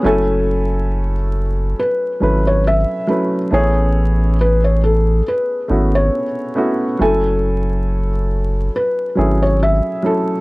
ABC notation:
X:1
M:4/4
L:1/16
Q:"Swing 16ths" 1/4=69
K:F#m
V:1 name="Felt piano"
A8 B3 c e2 z2 | c4 B c A2 B3 c4- c | A8 B3 c e2 z2 |]
V:2 name="Upright piano"
[F,A,CEg]4- [F,A,CEg] z4 z [F,A,CEB]2 z2 [F,A,CEB]2 | [A,B,CEG]4- [A,B,CEG] z4 z [A,B,CEF]2 z2 [A,B,CEF]2 | [F,A,CEg]4- [F,A,CEg] z4 z [F,A,CEG]2 z2 [F,A,CEA]2 |]
V:3 name="Sub bass" clef=bass
F,,,8 z2 G,,,3 z3 | A,,,8 z2 G,,,2 z4 | F,,,8 z2 G,,,3 z3 |]